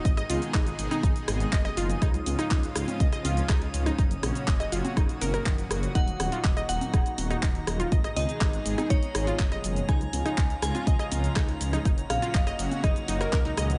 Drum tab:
HH |xxoxxxoxxxoxxxox|xxoxxxoxxxoxxxox|xxoxxxoxxxoxxxox|xxoxxxoxxxoxxxox|
SH |xxxxxxxxxxxxx-xx|xxxxxxxxxxxxx-xx|xxxxxxxxxxxxxxxx|xxxxxxxxxxxxx-xx|
CP |----x-------x---|----x-------x---|----x-------x---|----x-------x---|
SD |-r--r--r--r--r--|r--r--r--r--r--r|--r--r--r--r--r-|--r--r--r--r--r-|
CG |--o----o-------O|-Oo----o--o----O|-Oo----o--o----O|-Oo----o--o----O|
BD |o---o---o---o---|o---o---o---o---|o---o---o---o---|o---o---o---o---|

HH |xxoxxxoxxxoxxxox|xxoxxxoxxxoxxxox|xxoxxxoxxxoxxxox|
SH |xxxxxxxxxxxxx-xx|xxxxxxxxxxxxx-xx|xxxxxxxxxxxxx-xx|
CP |----x-------x---|----x-------x---|----x-------x---|
SD |-r--r--r--r--r--|r--r--r--r--r--r|--r--r--r--r--r-|
CG |--o----o-------O|-Oo----o--o----O|--o----o-------O|
BD |o---o---o---o---|o---o---o---o---|o---o---o---o---|